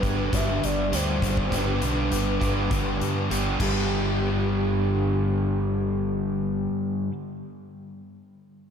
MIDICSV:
0, 0, Header, 1, 6, 480
1, 0, Start_track
1, 0, Key_signature, 1, "major"
1, 0, Tempo, 595238
1, 1226, Time_signature, 4, 2, 24, 8
1, 7017, End_track
2, 0, Start_track
2, 0, Title_t, "Soft synth lead"
2, 0, Program_c, 0, 80
2, 0, Note_on_c, 0, 71, 97
2, 275, Note_on_c, 0, 76, 97
2, 287, Note_off_c, 0, 71, 0
2, 511, Note_off_c, 0, 76, 0
2, 517, Note_on_c, 0, 74, 99
2, 764, Note_on_c, 0, 72, 90
2, 776, Note_off_c, 0, 74, 0
2, 1248, Note_on_c, 0, 71, 97
2, 1260, Note_off_c, 0, 72, 0
2, 2677, Note_off_c, 0, 71, 0
2, 2910, Note_on_c, 0, 67, 91
2, 5381, Note_off_c, 0, 67, 0
2, 7017, End_track
3, 0, Start_track
3, 0, Title_t, "Overdriven electric guitar"
3, 0, Program_c, 1, 29
3, 0, Note_on_c, 1, 43, 80
3, 30, Note_on_c, 1, 67, 65
3, 41, Note_on_c, 1, 62, 66
3, 48, Note_on_c, 1, 55, 60
3, 48, Note_on_c, 1, 59, 55
3, 260, Note_off_c, 1, 43, 0
3, 262, Note_on_c, 1, 50, 87
3, 263, Note_on_c, 1, 43, 90
3, 266, Note_off_c, 1, 55, 0
3, 269, Note_on_c, 1, 55, 84
3, 274, Note_off_c, 1, 62, 0
3, 274, Note_off_c, 1, 67, 0
3, 275, Note_off_c, 1, 59, 0
3, 277, Note_on_c, 1, 67, 95
3, 278, Note_on_c, 1, 59, 93
3, 278, Note_on_c, 1, 62, 91
3, 497, Note_off_c, 1, 67, 0
3, 500, Note_on_c, 1, 67, 59
3, 502, Note_off_c, 1, 62, 0
3, 505, Note_on_c, 1, 62, 57
3, 514, Note_off_c, 1, 59, 0
3, 518, Note_on_c, 1, 59, 55
3, 519, Note_off_c, 1, 55, 0
3, 522, Note_on_c, 1, 55, 53
3, 738, Note_off_c, 1, 55, 0
3, 742, Note_on_c, 1, 55, 67
3, 743, Note_off_c, 1, 59, 0
3, 744, Note_off_c, 1, 50, 0
3, 746, Note_on_c, 1, 59, 65
3, 748, Note_off_c, 1, 62, 0
3, 751, Note_on_c, 1, 62, 69
3, 757, Note_off_c, 1, 67, 0
3, 760, Note_on_c, 1, 67, 69
3, 979, Note_off_c, 1, 67, 0
3, 982, Note_on_c, 1, 67, 69
3, 989, Note_off_c, 1, 62, 0
3, 993, Note_on_c, 1, 62, 62
3, 998, Note_off_c, 1, 59, 0
3, 1002, Note_off_c, 1, 55, 0
3, 1002, Note_on_c, 1, 59, 54
3, 1005, Note_on_c, 1, 55, 52
3, 1215, Note_off_c, 1, 43, 0
3, 1218, Note_off_c, 1, 55, 0
3, 1218, Note_on_c, 1, 43, 82
3, 1220, Note_off_c, 1, 59, 0
3, 1221, Note_off_c, 1, 62, 0
3, 1224, Note_on_c, 1, 50, 88
3, 1226, Note_off_c, 1, 67, 0
3, 1228, Note_on_c, 1, 55, 86
3, 1229, Note_on_c, 1, 59, 84
3, 1230, Note_on_c, 1, 62, 82
3, 1236, Note_on_c, 1, 67, 93
3, 1450, Note_off_c, 1, 67, 0
3, 1459, Note_on_c, 1, 67, 63
3, 1460, Note_off_c, 1, 62, 0
3, 1468, Note_off_c, 1, 59, 0
3, 1469, Note_on_c, 1, 62, 61
3, 1471, Note_off_c, 1, 55, 0
3, 1477, Note_on_c, 1, 59, 55
3, 1480, Note_on_c, 1, 55, 52
3, 1690, Note_off_c, 1, 55, 0
3, 1690, Note_off_c, 1, 59, 0
3, 1699, Note_on_c, 1, 55, 65
3, 1700, Note_on_c, 1, 59, 70
3, 1701, Note_off_c, 1, 62, 0
3, 1702, Note_off_c, 1, 43, 0
3, 1703, Note_off_c, 1, 67, 0
3, 1705, Note_off_c, 1, 50, 0
3, 1711, Note_on_c, 1, 62, 77
3, 1713, Note_on_c, 1, 67, 77
3, 1928, Note_off_c, 1, 67, 0
3, 1935, Note_off_c, 1, 62, 0
3, 1937, Note_on_c, 1, 67, 67
3, 1938, Note_off_c, 1, 59, 0
3, 1942, Note_off_c, 1, 55, 0
3, 1944, Note_on_c, 1, 62, 65
3, 1947, Note_on_c, 1, 59, 53
3, 1952, Note_on_c, 1, 55, 46
3, 2163, Note_off_c, 1, 55, 0
3, 2163, Note_on_c, 1, 43, 78
3, 2167, Note_on_c, 1, 50, 77
3, 2169, Note_off_c, 1, 59, 0
3, 2172, Note_off_c, 1, 62, 0
3, 2173, Note_on_c, 1, 55, 84
3, 2177, Note_off_c, 1, 67, 0
3, 2178, Note_on_c, 1, 59, 82
3, 2182, Note_on_c, 1, 62, 92
3, 2186, Note_on_c, 1, 67, 94
3, 2407, Note_off_c, 1, 67, 0
3, 2410, Note_off_c, 1, 62, 0
3, 2416, Note_on_c, 1, 67, 57
3, 2420, Note_off_c, 1, 59, 0
3, 2420, Note_on_c, 1, 62, 51
3, 2422, Note_off_c, 1, 55, 0
3, 2429, Note_on_c, 1, 59, 52
3, 2431, Note_on_c, 1, 55, 46
3, 2647, Note_off_c, 1, 55, 0
3, 2652, Note_off_c, 1, 59, 0
3, 2654, Note_off_c, 1, 43, 0
3, 2656, Note_off_c, 1, 50, 0
3, 2657, Note_on_c, 1, 55, 66
3, 2659, Note_off_c, 1, 62, 0
3, 2662, Note_on_c, 1, 59, 68
3, 2666, Note_off_c, 1, 67, 0
3, 2669, Note_on_c, 1, 62, 74
3, 2676, Note_on_c, 1, 67, 71
3, 2889, Note_on_c, 1, 43, 72
3, 2895, Note_off_c, 1, 55, 0
3, 2895, Note_on_c, 1, 50, 81
3, 2901, Note_off_c, 1, 59, 0
3, 2904, Note_on_c, 1, 55, 88
3, 2907, Note_off_c, 1, 62, 0
3, 2911, Note_off_c, 1, 67, 0
3, 2911, Note_on_c, 1, 59, 82
3, 2918, Note_on_c, 1, 62, 89
3, 2925, Note_on_c, 1, 67, 88
3, 5711, Note_off_c, 1, 43, 0
3, 5717, Note_off_c, 1, 50, 0
3, 5727, Note_off_c, 1, 55, 0
3, 5733, Note_off_c, 1, 59, 0
3, 5740, Note_off_c, 1, 62, 0
3, 5747, Note_off_c, 1, 67, 0
3, 7017, End_track
4, 0, Start_track
4, 0, Title_t, "Overdriven electric guitar"
4, 0, Program_c, 2, 29
4, 40, Note_on_c, 2, 43, 60
4, 40, Note_on_c, 2, 50, 62
4, 736, Note_off_c, 2, 50, 0
4, 741, Note_off_c, 2, 43, 0
4, 744, Note_on_c, 2, 43, 69
4, 746, Note_on_c, 2, 50, 71
4, 1211, Note_off_c, 2, 50, 0
4, 1220, Note_off_c, 2, 43, 0
4, 1951, Note_on_c, 2, 50, 70
4, 1955, Note_on_c, 2, 43, 62
4, 2651, Note_off_c, 2, 43, 0
4, 2654, Note_off_c, 2, 50, 0
4, 2661, Note_on_c, 2, 43, 64
4, 2665, Note_on_c, 2, 50, 63
4, 2885, Note_off_c, 2, 43, 0
4, 2892, Note_off_c, 2, 50, 0
4, 7017, End_track
5, 0, Start_track
5, 0, Title_t, "Fingered electric bass"
5, 0, Program_c, 3, 33
5, 22, Note_on_c, 3, 31, 79
5, 252, Note_off_c, 3, 31, 0
5, 270, Note_on_c, 3, 31, 90
5, 496, Note_off_c, 3, 31, 0
5, 517, Note_on_c, 3, 31, 81
5, 739, Note_off_c, 3, 31, 0
5, 750, Note_on_c, 3, 38, 78
5, 976, Note_off_c, 3, 38, 0
5, 991, Note_on_c, 3, 31, 81
5, 1216, Note_off_c, 3, 31, 0
5, 1229, Note_on_c, 3, 31, 82
5, 1455, Note_off_c, 3, 31, 0
5, 1472, Note_on_c, 3, 35, 79
5, 1697, Note_off_c, 3, 35, 0
5, 1701, Note_on_c, 3, 31, 75
5, 1931, Note_off_c, 3, 31, 0
5, 1952, Note_on_c, 3, 31, 68
5, 2176, Note_off_c, 3, 31, 0
5, 2191, Note_on_c, 3, 31, 77
5, 2416, Note_off_c, 3, 31, 0
5, 2428, Note_on_c, 3, 43, 78
5, 2654, Note_off_c, 3, 43, 0
5, 2662, Note_on_c, 3, 31, 81
5, 2891, Note_off_c, 3, 31, 0
5, 2906, Note_on_c, 3, 31, 83
5, 5378, Note_off_c, 3, 31, 0
5, 7017, End_track
6, 0, Start_track
6, 0, Title_t, "Drums"
6, 25, Note_on_c, 9, 36, 73
6, 27, Note_on_c, 9, 42, 64
6, 106, Note_off_c, 9, 36, 0
6, 108, Note_off_c, 9, 42, 0
6, 265, Note_on_c, 9, 36, 100
6, 266, Note_on_c, 9, 42, 85
6, 346, Note_off_c, 9, 36, 0
6, 347, Note_off_c, 9, 42, 0
6, 512, Note_on_c, 9, 42, 64
6, 593, Note_off_c, 9, 42, 0
6, 750, Note_on_c, 9, 42, 84
6, 831, Note_off_c, 9, 42, 0
6, 987, Note_on_c, 9, 36, 74
6, 994, Note_on_c, 9, 42, 65
6, 1067, Note_off_c, 9, 36, 0
6, 1074, Note_off_c, 9, 42, 0
6, 1107, Note_on_c, 9, 36, 73
6, 1187, Note_off_c, 9, 36, 0
6, 1226, Note_on_c, 9, 36, 80
6, 1228, Note_on_c, 9, 42, 76
6, 1307, Note_off_c, 9, 36, 0
6, 1309, Note_off_c, 9, 42, 0
6, 1466, Note_on_c, 9, 42, 60
6, 1547, Note_off_c, 9, 42, 0
6, 1707, Note_on_c, 9, 42, 69
6, 1788, Note_off_c, 9, 42, 0
6, 1947, Note_on_c, 9, 36, 72
6, 1951, Note_on_c, 9, 42, 57
6, 2028, Note_off_c, 9, 36, 0
6, 2031, Note_off_c, 9, 42, 0
6, 2186, Note_on_c, 9, 36, 93
6, 2186, Note_on_c, 9, 42, 78
6, 2266, Note_off_c, 9, 36, 0
6, 2266, Note_off_c, 9, 42, 0
6, 2431, Note_on_c, 9, 42, 55
6, 2511, Note_off_c, 9, 42, 0
6, 2672, Note_on_c, 9, 42, 71
6, 2752, Note_off_c, 9, 42, 0
6, 2902, Note_on_c, 9, 36, 97
6, 2904, Note_on_c, 9, 49, 80
6, 2983, Note_off_c, 9, 36, 0
6, 2985, Note_off_c, 9, 49, 0
6, 7017, End_track
0, 0, End_of_file